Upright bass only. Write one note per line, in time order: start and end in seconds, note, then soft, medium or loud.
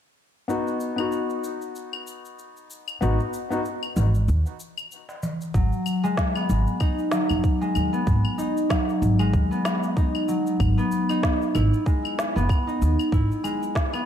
3.02 3.17 G#1 medium
3.96 4.30 G#1 medium
4.28 4.43 D#2 medium
5.54 5.69 G#1 medium
6.50 6.64 G#1 medium
7.31 7.42 F#1 medium
7.76 7.90 D#2 medium
8.07 8.22 G#1 medium
9.02 9.35 G#1 medium
9.34 9.48 D#2 medium
10.60 10.75 G#1 medium
11.55 11.70 G#1 loud
12.36 12.47 F#1 medium
12.82 12.96 D#2 medium
13.12 13.27 G#1 medium